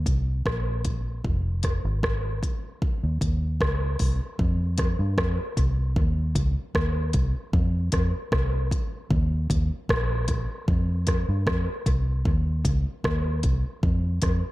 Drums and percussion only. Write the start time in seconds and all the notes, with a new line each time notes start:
0.06 kick, closed hi-hat
0.46 kick, cross-stick
0.85 kick, closed hi-hat
1.24 kick
1.63 kick, cross-stick, closed hi-hat
2.03 kick, cross-stick
2.43 kick, closed hi-hat
2.82 kick
3.21 kick, closed hi-hat
3.61 kick, cross-stick
3.99 kick, open hi-hat
4.39 kick
4.78 kick, cross-stick, closed hi-hat
5.18 kick, cross-stick
5.57 kick, closed hi-hat
5.96 kick
6.35 kick, closed hi-hat
6.75 kick, cross-stick
7.13 kick, closed hi-hat
7.53 kick
7.92 kick, cross-stick, closed hi-hat
8.32 kick, cross-stick
8.71 kick, closed hi-hat
9.11 kick
9.50 kick, closed hi-hat
9.89 kick, cross-stick
10.28 kick, closed hi-hat
10.68 kick
11.07 kick, cross-stick, closed hi-hat
11.47 kick, cross-stick
11.86 kick, closed hi-hat
12.25 kick
12.65 kick, closed hi-hat
13.04 kick, cross-stick
13.43 kick, closed hi-hat
13.83 kick
14.22 kick, cross-stick, closed hi-hat